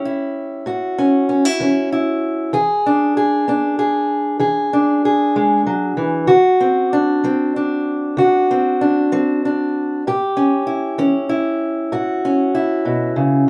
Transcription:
0, 0, Header, 1, 2, 480
1, 0, Start_track
1, 0, Tempo, 626305
1, 1943, Time_signature, 12, 3, 24, 8
1, 10344, End_track
2, 0, Start_track
2, 0, Title_t, "Steel-string acoustic guitar"
2, 0, Program_c, 0, 25
2, 0, Note_on_c, 0, 52, 66
2, 0, Note_on_c, 0, 61, 56
2, 0, Note_on_c, 0, 67, 72
2, 41, Note_on_c, 0, 64, 56
2, 220, Note_off_c, 0, 52, 0
2, 503, Note_off_c, 0, 67, 0
2, 505, Note_on_c, 0, 45, 65
2, 513, Note_on_c, 0, 66, 56
2, 745, Note_off_c, 0, 61, 0
2, 755, Note_on_c, 0, 61, 57
2, 936, Note_off_c, 0, 45, 0
2, 980, Note_off_c, 0, 61, 0
2, 986, Note_off_c, 0, 64, 0
2, 989, Note_on_c, 0, 61, 53
2, 1112, Note_off_c, 0, 61, 0
2, 1112, Note_on_c, 0, 64, 50
2, 1227, Note_on_c, 0, 52, 65
2, 1235, Note_on_c, 0, 61, 59
2, 1466, Note_off_c, 0, 64, 0
2, 1475, Note_on_c, 0, 64, 58
2, 1657, Note_off_c, 0, 52, 0
2, 1921, Note_off_c, 0, 61, 0
2, 1921, Note_off_c, 0, 64, 0
2, 1939, Note_on_c, 0, 52, 75
2, 1941, Note_off_c, 0, 66, 0
2, 1944, Note_on_c, 0, 68, 73
2, 2195, Note_on_c, 0, 62, 60
2, 2374, Note_off_c, 0, 52, 0
2, 2420, Note_off_c, 0, 68, 0
2, 2429, Note_on_c, 0, 68, 67
2, 2666, Note_on_c, 0, 59, 63
2, 2670, Note_off_c, 0, 62, 0
2, 2673, Note_on_c, 0, 62, 58
2, 2894, Note_off_c, 0, 68, 0
2, 2903, Note_on_c, 0, 68, 65
2, 3098, Note_off_c, 0, 59, 0
2, 3364, Note_off_c, 0, 68, 0
2, 3368, Note_on_c, 0, 52, 72
2, 3374, Note_on_c, 0, 68, 61
2, 3618, Note_off_c, 0, 62, 0
2, 3627, Note_on_c, 0, 62, 56
2, 3809, Note_off_c, 0, 52, 0
2, 3860, Note_off_c, 0, 68, 0
2, 3872, Note_on_c, 0, 68, 62
2, 4107, Note_on_c, 0, 56, 63
2, 4339, Note_off_c, 0, 56, 0
2, 4342, Note_on_c, 0, 54, 60
2, 4572, Note_off_c, 0, 54, 0
2, 4575, Note_on_c, 0, 52, 63
2, 4798, Note_off_c, 0, 62, 0
2, 4800, Note_off_c, 0, 68, 0
2, 4807, Note_on_c, 0, 50, 73
2, 4809, Note_on_c, 0, 66, 69
2, 4821, Note_off_c, 0, 52, 0
2, 5062, Note_on_c, 0, 60, 52
2, 5248, Note_off_c, 0, 50, 0
2, 5310, Note_on_c, 0, 62, 64
2, 5544, Note_off_c, 0, 60, 0
2, 5547, Note_on_c, 0, 54, 61
2, 5553, Note_on_c, 0, 60, 58
2, 5788, Note_off_c, 0, 62, 0
2, 5796, Note_on_c, 0, 62, 59
2, 5978, Note_off_c, 0, 54, 0
2, 6256, Note_off_c, 0, 66, 0
2, 6261, Note_on_c, 0, 50, 76
2, 6272, Note_on_c, 0, 66, 64
2, 6508, Note_off_c, 0, 60, 0
2, 6521, Note_on_c, 0, 60, 55
2, 6695, Note_off_c, 0, 50, 0
2, 6744, Note_off_c, 0, 62, 0
2, 6754, Note_on_c, 0, 62, 56
2, 6981, Note_off_c, 0, 60, 0
2, 6990, Note_on_c, 0, 60, 63
2, 6994, Note_on_c, 0, 54, 67
2, 7228, Note_off_c, 0, 62, 0
2, 7244, Note_on_c, 0, 62, 55
2, 7420, Note_off_c, 0, 54, 0
2, 7677, Note_off_c, 0, 60, 0
2, 7684, Note_off_c, 0, 62, 0
2, 7706, Note_off_c, 0, 66, 0
2, 7719, Note_on_c, 0, 45, 76
2, 7723, Note_on_c, 0, 67, 71
2, 7945, Note_on_c, 0, 61, 59
2, 8142, Note_off_c, 0, 45, 0
2, 8175, Note_on_c, 0, 64, 57
2, 8410, Note_off_c, 0, 61, 0
2, 8417, Note_on_c, 0, 52, 65
2, 8421, Note_on_c, 0, 61, 61
2, 8652, Note_off_c, 0, 64, 0
2, 8655, Note_on_c, 0, 64, 59
2, 8850, Note_off_c, 0, 52, 0
2, 9136, Note_on_c, 0, 45, 69
2, 9137, Note_off_c, 0, 67, 0
2, 9140, Note_on_c, 0, 66, 61
2, 9377, Note_off_c, 0, 61, 0
2, 9388, Note_on_c, 0, 61, 57
2, 9568, Note_off_c, 0, 45, 0
2, 9613, Note_off_c, 0, 64, 0
2, 9616, Note_on_c, 0, 64, 57
2, 9851, Note_on_c, 0, 47, 63
2, 10084, Note_off_c, 0, 47, 0
2, 10087, Note_on_c, 0, 49, 60
2, 10327, Note_off_c, 0, 49, 0
2, 10344, Note_off_c, 0, 61, 0
2, 10344, Note_off_c, 0, 64, 0
2, 10344, Note_off_c, 0, 66, 0
2, 10344, End_track
0, 0, End_of_file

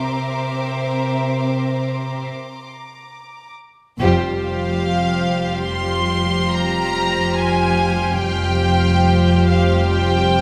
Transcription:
0, 0, Header, 1, 7, 480
1, 0, Start_track
1, 0, Tempo, 845070
1, 2271, Time_signature, 5, 2, 24, 8
1, 5914, End_track
2, 0, Start_track
2, 0, Title_t, "Violin section"
2, 0, Program_c, 0, 48
2, 0, Note_on_c, 0, 82, 37
2, 0, Note_on_c, 0, 84, 36
2, 0, Note_on_c, 0, 86, 44
2, 1528, Note_off_c, 0, 84, 0
2, 2009, Note_off_c, 0, 82, 0
2, 2009, Note_off_c, 0, 86, 0
2, 2274, Note_on_c, 0, 84, 30
2, 2750, Note_on_c, 0, 89, 33
2, 5914, Note_off_c, 0, 84, 0
2, 5914, Note_off_c, 0, 89, 0
2, 5914, End_track
3, 0, Start_track
3, 0, Title_t, "Violin section"
3, 0, Program_c, 1, 48
3, 0, Note_on_c, 1, 76, 29
3, 1287, Note_off_c, 1, 76, 0
3, 2511, Note_on_c, 1, 77, 53
3, 3209, Note_off_c, 1, 77, 0
3, 3229, Note_on_c, 1, 84, 55
3, 3701, Note_off_c, 1, 84, 0
3, 3709, Note_on_c, 1, 82, 61
3, 4179, Note_on_c, 1, 80, 55
3, 4190, Note_off_c, 1, 82, 0
3, 4658, Note_on_c, 1, 79, 62
3, 4665, Note_off_c, 1, 80, 0
3, 5370, Note_off_c, 1, 79, 0
3, 5390, Note_on_c, 1, 77, 47
3, 5626, Note_off_c, 1, 77, 0
3, 5632, Note_on_c, 1, 79, 58
3, 5914, Note_off_c, 1, 79, 0
3, 5914, End_track
4, 0, Start_track
4, 0, Title_t, "Violin section"
4, 0, Program_c, 2, 48
4, 0, Note_on_c, 2, 70, 28
4, 0, Note_on_c, 2, 72, 28
4, 1285, Note_off_c, 2, 72, 0
4, 1286, Note_off_c, 2, 70, 0
4, 2268, Note_on_c, 2, 67, 44
4, 2270, Note_on_c, 2, 72, 47
4, 4647, Note_off_c, 2, 67, 0
4, 4648, Note_off_c, 2, 72, 0
4, 4665, Note_on_c, 2, 67, 40
4, 4666, Note_on_c, 2, 72, 40
4, 5914, Note_off_c, 2, 67, 0
4, 5914, Note_off_c, 2, 72, 0
4, 5914, End_track
5, 0, Start_track
5, 0, Title_t, "Viola section"
5, 0, Program_c, 3, 48
5, 0, Note_on_c, 3, 60, 32
5, 1289, Note_off_c, 3, 60, 0
5, 2268, Note_on_c, 3, 55, 42
5, 2268, Note_on_c, 3, 65, 48
5, 4647, Note_off_c, 3, 55, 0
5, 4647, Note_off_c, 3, 65, 0
5, 4665, Note_on_c, 3, 55, 39
5, 4665, Note_on_c, 3, 65, 40
5, 5914, Note_off_c, 3, 55, 0
5, 5914, Note_off_c, 3, 65, 0
5, 5914, End_track
6, 0, Start_track
6, 0, Title_t, "Cello section"
6, 0, Program_c, 4, 48
6, 0, Note_on_c, 4, 48, 30
6, 1285, Note_off_c, 4, 48, 0
6, 2268, Note_on_c, 4, 41, 50
6, 4647, Note_off_c, 4, 41, 0
6, 4667, Note_on_c, 4, 41, 43
6, 5914, Note_off_c, 4, 41, 0
6, 5914, End_track
7, 0, Start_track
7, 0, Title_t, "Double bass section"
7, 0, Program_c, 5, 48
7, 0, Note_on_c, 5, 36, 27
7, 330, Note_off_c, 5, 36, 0
7, 2275, Note_on_c, 5, 29, 55
7, 4650, Note_off_c, 5, 29, 0
7, 4673, Note_on_c, 5, 29, 47
7, 5914, Note_off_c, 5, 29, 0
7, 5914, End_track
0, 0, End_of_file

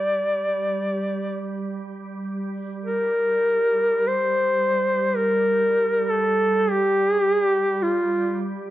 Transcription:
0, 0, Header, 1, 3, 480
1, 0, Start_track
1, 0, Key_signature, -2, "minor"
1, 0, Tempo, 500000
1, 8356, End_track
2, 0, Start_track
2, 0, Title_t, "Duduk"
2, 0, Program_c, 0, 69
2, 0, Note_on_c, 0, 74, 75
2, 1520, Note_off_c, 0, 74, 0
2, 2735, Note_on_c, 0, 70, 89
2, 3910, Note_on_c, 0, 72, 98
2, 3924, Note_off_c, 0, 70, 0
2, 4956, Note_on_c, 0, 70, 84
2, 4970, Note_off_c, 0, 72, 0
2, 5851, Note_on_c, 0, 69, 88
2, 5866, Note_off_c, 0, 70, 0
2, 6444, Note_on_c, 0, 67, 95
2, 6458, Note_off_c, 0, 69, 0
2, 7511, Note_on_c, 0, 65, 77
2, 7526, Note_off_c, 0, 67, 0
2, 8101, Note_off_c, 0, 65, 0
2, 8356, End_track
3, 0, Start_track
3, 0, Title_t, "Ambient pad"
3, 0, Program_c, 1, 92
3, 70, Note_on_c, 1, 55, 48
3, 8356, Note_off_c, 1, 55, 0
3, 8356, End_track
0, 0, End_of_file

